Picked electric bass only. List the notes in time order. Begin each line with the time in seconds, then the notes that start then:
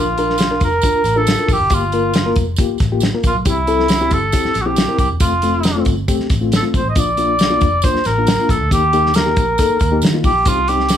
Already playing: A#1
0.61 F1
0.94 muted picked electric bass stroke
1.04 A1
1.49 A#1
1.60 F#1
1.70 G1
2.36 F1
2.70 muted picked electric bass stroke
2.80 A1
3.24 A#1
3.35 B1
3.46 C2
4.12 G1
4.45 muted picked electric bass stroke
4.56 A#1
4.99 C2
5.10 E1
5.21 F1
5.86 G1
6.19 muted picked electric bass stroke
6.30 A1
6.74 A#1
6.85 A1
6.96 A#1
7.62 F1
7.95 muted picked electric bass stroke
8.06 A1
8.49 A#1
8.61 D2
8.71 D#2
9.37 A#1
9.70 muted picked electric bass stroke
9.80 D#2
10.02 D#3
10.24 A#1
10.46 C2